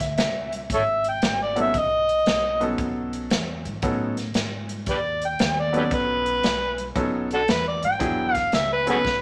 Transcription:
Already playing: upright bass D2
0.00 electric slide guitar E5, kick, snare, closed hi-hat
0.18 upright bass C#2, electric slide guitar E5, snare, closed hi-hat
0.53 closed hi-hat
0.70 upright bass G#1, kick, closed hi-hat
0.74 harmonica A4 C#5 E5
1.04 closed hi-hat
1.09 harmonica G5
1.22 upright bass G#1, snare, closed hi-hat
1.43 harmonica D5
1.55 upright piano F#3 B3 C#4 D#4 A4, closed hi-hat
1.61 harmonica E5
1.74 upright bass B1, kick, closed hi-hat
1.78 harmonica D#5
2.09 closed hi-hat
2.26 upright bass B1, snare, closed hi-hat
2.60 upright piano F#3 B3 C#4 D#4 A4, closed hi-hat
2.78 upright bass B1, kick, closed hi-hat
3.13 closed hi-hat
3.30 upright bass E2, snare, closed hi-hat
3.65 upright bass G#2, closed hi-hat
3.82 upright bass A2, upright piano F#3 B3 C#4 D#4 A4, kick, closed hi-hat
4.17 snare, closed hi-hat
4.34 upright bass G#2, snare, closed hi-hat
4.69 closed hi-hat
4.86 upright bass D#2, harmonica G4 B4 D5, kick, closed hi-hat
5.22 harmonica G5, closed hi-hat
5.39 upright bass D#2, snare, closed hi-hat
5.60 harmonica D5
5.73 upright piano F#3 B3 C#4 D#4 A4, closed hi-hat
5.77 harmonica G4 B4 D5
5.91 upright bass B1, harmonica B4, kick, closed hi-hat
6.26 closed hi-hat
6.43 upright bass B1, snare, closed hi-hat
6.78 closed hi-hat
6.95 upright bass B1, upright piano F#3 B3 C#4 D#4 A4, kick, closed hi-hat
7.31 harmonica D4 F#4 A4, closed hi-hat
7.48 upright bass E2, harmonica B4, snare, closed hi-hat
7.68 harmonica D5
7.83 upright bass G#2, harmonica G5, closed hi-hat
7.99 upright bass E1, upright piano F#3 B3 D4 E4 G#4, kick, closed hi-hat
8.34 harmonica F5, kick, snare, closed hi-hat
8.52 upright bass C#2, harmonica E5, snare, closed hi-hat
8.73 harmonica B4
8.86 upright piano F#3 B3 C#4 D#4 A4, harmonica F#4 G#4 B4, closed hi-hat
9.05 upright bass B1, kick, snare

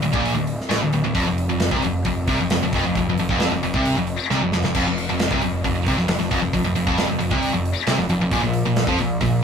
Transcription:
0.02 picked electric bass D1, distorted electric guitar D2, open hi-hat
0.13 picked electric bass A#1, distorted electric guitar A#2, kick
0.26 open hi-hat
0.35 picked electric bass D1, distorted electric guitar D2
0.47 open hi-hat
0.60 snare
0.69 picked electric bass A1, distorted electric guitar A2, snare, open hi-hat
0.82 picked electric bass D1, distorted electric guitar D2
0.93 picked electric bass D1, distorted electric guitar D2, open hi-hat
1.04 picked electric bass D1, distorted electric guitar D2
1.15 picked electric bass F1, distorted electric guitar F2, kick, open hi-hat
1.27 picked electric bass F1, distorted electric guitar F2
1.38 open hi-hat
1.48 picked electric bass F1, distorted electric guitar F2
1.60 snare, open hi-hat
1.71 picked electric bass C2, distorted electric guitar C3, kick
1.82 picked electric bass F1, distorted electric guitar F2, open hi-hat
2.05 picked electric bass F1, distorted electric guitar F2, kick, open hi-hat
2.27 picked electric bass C2, distorted electric guitar C3, kick, open hi-hat
2.40 picked electric bass F1, distorted electric guitar F2
2.50 picked electric bass F1, distorted electric guitar F2, snare, open hi-hat
2.63 picked electric bass F1, distorted electric guitar F2
2.73 picked electric bass F1, distorted electric guitar F2, kick, open hi-hat
2.84 picked electric bass F1, distorted electric guitar F2
2.95 picked electric bass F1, distorted electric guitar F2, kick, open hi-hat
3.07 picked electric bass F1, distorted electric guitar F2
3.18 picked electric bass F1, distorted electric guitar F2, open hi-hat
3.29 picked electric bass F1, distorted electric guitar F2, kick
3.40 snare, open hi-hat
3.51 picked electric bass F1, distorted electric guitar F2
3.62 picked electric bass F1, distorted electric guitar F2, open hi-hat
3.74 picked electric bass C2, distorted electric guitar C3, kick
3.85 open hi-hat
3.96 picked electric bass F1, distorted electric guitar F2
4.07 open hi-hat
4.30 picked electric bass C2, distorted electric guitar C3, snare
4.42 picked electric bass F1, distorted electric guitar F2
4.52 picked electric bass F1, distorted electric guitar F2, snare
4.64 picked electric bass F1, distorted electric guitar F2, snare
4.75 picked electric bass F1, distorted electric guitar F2, kick, crash
4.88 picked electric bass F1, distorted electric guitar F2
4.98 open hi-hat
5.10 picked electric bass F1, distorted electric guitar F2
5.20 snare, open hi-hat
5.31 picked electric bass C2, distorted electric guitar C3, kick
5.42 picked electric bass F1, distorted electric guitar F2, open hi-hat
5.64 picked electric bass F1, distorted electric guitar F2, kick, open hi-hat
5.86 picked electric bass C2, distorted electric guitar C3, kick, open hi-hat
5.98 picked electric bass F1, distorted electric guitar F2, snare
6.08 picked electric bass F1, distorted electric guitar F2, snare, open hi-hat
6.19 picked electric bass F1, distorted electric guitar F2, snare
6.31 picked electric bass F1, distorted electric guitar F2, kick, open hi-hat
6.42 picked electric bass F1, distorted electric guitar F2
6.53 picked electric bass F1, distorted electric guitar F2, kick, open hi-hat
6.65 picked electric bass F1, distorted electric guitar F2
6.76 picked electric bass F1, distorted electric guitar F2, open hi-hat
6.87 picked electric bass F1, distorted electric guitar F2, kick
6.98 snare, open hi-hat
7.09 picked electric bass F1, distorted electric guitar F2
7.19 picked electric bass F1, distorted electric guitar F2, open hi-hat
7.31 picked electric bass C2, distorted electric guitar C3, kick
7.43 open hi-hat
7.54 picked electric bass F1, distorted electric guitar F2
7.65 open hi-hat
7.87 picked electric bass C2, distorted electric guitar C3, snare, open hi-hat
7.98 picked electric bass F1, distorted electric guitar F2, snare
8.09 picked electric bass F1, distorted electric guitar F2, open hi-hat
8.21 picked electric bass F1, distorted electric guitar F2
8.31 picked electric bass A#1, distorted electric guitar A#2, kick, open hi-hat
8.43 picked electric bass A#1, distorted electric guitar A#2
8.53 open hi-hat
8.65 picked electric bass A#1, distorted electric guitar A#2
8.76 snare, open hi-hat
8.87 picked electric bass F2, distorted electric guitar F3, kick
8.98 picked electric bass A#1, distorted electric guitar A#2, open hi-hat
9.21 picked electric bass A#1, distorted electric guitar A#2, kick, open hi-hat

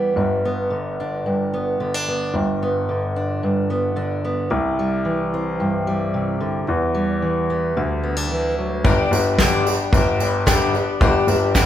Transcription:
Already playing: steel-string acoustic guitar E2 E3 G3 B3 E4
0.16 grand piano G1, steel-string acoustic guitar G2
0.45 steel-string acoustic guitar B3
0.70 steel-string acoustic guitar D3
1.00 steel-string acoustic guitar D4
1.26 steel-string acoustic guitar G2
1.54 steel-string acoustic guitar B3
1.80 steel-string acoustic guitar D3 B3
1.94 steel-string acoustic guitar D4
2.08 steel-string acoustic guitar B3
2.34 grand piano G1, steel-string acoustic guitar G2
2.63 steel-string acoustic guitar B3
2.89 steel-string acoustic guitar D3
3.16 steel-string acoustic guitar D4
3.43 steel-string acoustic guitar G2
3.70 steel-string acoustic guitar B3
3.96 steel-string acoustic guitar D3 D4
4.25 steel-string acoustic guitar B3
4.50 grand piano C2, steel-string acoustic guitar C3
4.79 steel-string acoustic guitar G3
5.05 steel-string acoustic guitar E3
5.34 steel-string acoustic guitar C4
5.60 steel-string acoustic guitar G2
5.87 steel-string acoustic guitar G3
6.14 steel-string acoustic guitar C3
6.40 steel-string acoustic guitar D3
6.67 steel-string acoustic guitar E2, grand piano E2
6.94 steel-string acoustic guitar G3
7.22 steel-string acoustic guitar E3
7.50 steel-string acoustic guitar B3
7.77 grand piano D2, steel-string acoustic guitar D3
8.03 steel-string acoustic guitar B3
8.17 steel-string acoustic guitar D4
8.31 steel-string acoustic guitar E3
8.58 steel-string acoustic guitar F#3
8.84 grand piano G1, twelve-string acoustic guitar G2 D3 G3 B3 D4 G4, kick, tambourine
9.11 grand piano G1, twelve-string acoustic guitar G3 B3 D4 G4, tambourine
9.38 twelve-string acoustic guitar G2 D3 G3 B3 D4 G4, kick, snare, tambourine
9.66 twelve-string acoustic guitar G3 B3 D4 G4, tambourine
9.93 grand piano G1, twelve-string acoustic guitar G3 B3 D4 G4, kick, tambourine
10.20 twelve-string acoustic guitar G3 B3 D4 G4, tambourine
10.46 twelve-string acoustic guitar G2 D3 G3 B3 D4 G4, kick, snare, tambourine
10.74 twelve-string acoustic guitar G3 B3 D4 G4, tambourine
11.01 grand piano G1, twelve-string acoustic guitar G2 D3 G3 B3 D4 G4, kick, tambourine
11.27 grand piano G1, twelve-string acoustic guitar G3 B3 D4 G4, tambourine
11.54 twelve-string acoustic guitar G2 D3 G3 B3 D4 G4, kick, snare, tambourine

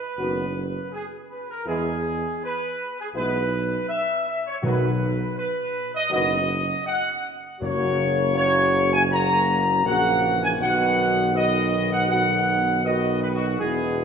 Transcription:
Already playing: trumpet section B4
0.17 tuba F#1, trombone section D#3 F#3, french horn section B3 F#4
0.92 trumpet section G#4
1.30 trumpet section B4
1.50 trumpet section A#4
1.66 tuba E2, trombone section E3 G#3, french horn section B3 E4, trumpet section G#4
2.43 trumpet section B4
2.99 trumpet section G#4
3.15 tuba B1, trombone section E3 G#3, french horn section B3 E4, trumpet section B4
3.89 trumpet section E5
4.46 trumpet section C#5
4.62 tuba B1, timpani B2, trombone section D#3 F#3, french horn section B3 F#4, trumpet section B4
5.37 trumpet section B4
5.95 trumpet section D#5
6.09 tuba F#1, trombone section D#3 F#3, french horn section B3 F#4, trumpet section D#5
6.87 trumpet section F#5
7.60 tuba F#1, timpani F#2, trombone section C#3 F#3, french horn section A#3 F#4, trumpet section C#5
8.34 trombone section C#3 F#3, french horn section A#3 F#4, trumpet section C#5
8.93 trumpet section G#5
9.09 trombone section C#3 F#3, french horn section A#3 F#4, trumpet section A#5
9.84 tuba A#1, trombone section C#3 F#3, french horn section A#3 F#4, trumpet section F#5
10.22 trombone section E3
10.43 trumpet section G#5
10.59 tuba B1, trombone section B2 D#3, french horn section B3 F#4, trumpet section F#5
11.34 trombone section B2 D#3, french horn section B3 F#4, trumpet section D#5
11.93 trumpet section F#5
12.08 trombone section B2 D#3, french horn section B3 F#4, trumpet section F#5
12.84 trombone section B2 D#3, french horn section B3 F#4, trumpet section D#5
13.22 trumpet section B4
13.34 trumpet section F#4
13.59 tuba E1, trombone section B2 G#3, french horn section B3 E4, trumpet section G#4

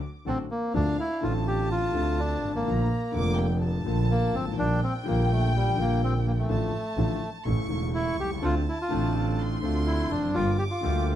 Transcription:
Already playing: violin section D6
0.25 grand piano A1 A2 D3 F#3 A3 F#4, double bass A1, bandoneon C4 D4 F#4 A4
0.51 bandoneon A#3
0.74 grand piano D2 D3 A3 C4 F4, double bass D2, bandoneon D4, violin section F5
1.00 bandoneon E4
1.21 grand piano A1 A2 D3 A3 C4, double bass A1, bandoneon F4, violin section A5
1.25 grand piano F4
1.47 bandoneon G4
1.71 bandoneon F4
1.94 grand piano D2 D3 A3 C4 F4, double bass D2
2.19 bandoneon D4
2.43 double bass G#1
2.49 grand piano G1
2.55 grand piano G#1, bandoneon A#3
2.61 grand piano A1
2.66 grand piano A#1 A#2 D3 A3 A#3 F4, double bass A#1, violin section A#5
3.12 grand piano F1 F2 D3 A#3 A4, double bass F1, violin section D6
3.16 grand piano F4
3.37 violin section G5
3.61 violin section A5
3.84 grand piano A#1 A#2 D3 A3 A#3 F4, double bass A#1
4.11 bandoneon A#3
4.34 double bass G#1, bandoneon C4
4.40 grand piano G1
4.46 grand piano G#1
4.52 grand piano A1
4.57 grand piano A#1 A#2 D3 G3 A#3 F4, double bass A#1, bandoneon D4, violin section G5
4.83 bandoneon C4
5.03 grand piano A#1 A#2 D3 G3 A#3, double bass A#1, bandoneon A#3
5.08 grand piano F4
5.32 bandoneon A3
5.56 bandoneon G3
5.75 grand piano A#1 A#2 D3 G3 A#3, double bass A#1
5.79 bandoneon A#3, grand piano F4
6.04 bandoneon C4
6.27 bandoneon A#3
6.38 bandoneon A3
6.49 double bass A1, grand piano A1 A2 D3 F3 A3 F4, violin section A5
6.97 double bass A1, grand piano A1 A2 D3 F3 A3 F4
7.44 grand piano A1 A2 C#3 E3 A3 E4, double bass A1, violin section C#6
7.68 double bass E1, grand piano E1 E2 C#3 E3 A3
7.72 grand piano E4
7.94 bandoneon E4, violin section C#6
8.18 double bass C2, bandoneon G4
8.24 grand piano B1
8.30 grand piano C2
8.36 grand piano C#2
8.42 grand piano D2 D3 A3 C4 F4, double bass D2, bandoneon C4 D4 F4, violin section A5
8.69 bandoneon E4
8.82 bandoneon F4
8.88 grand piano A1 A2 D3 A3 C4 F4, double bass A1, bandoneon C4 D4 F4
9.38 violin section C6
9.60 grand piano D2 D3 A3 C4, double bass D2, bandoneon C4 D4 F4
9.65 grand piano F4
9.87 bandoneon E4
10.11 double bass F1, bandoneon D4
10.17 grand piano E2
10.23 grand piano F2
10.29 grand piano F#2
10.34 grand piano G1 G2 D3 G3 A#3 F4, double bass G1, bandoneon A#3 F4 G4, violin section D6
10.58 bandoneon G4
10.71 bandoneon F4
10.81 double bass D2, grand piano D2 D3 G3 A#3 F4, bandoneon A#3 F4 G4

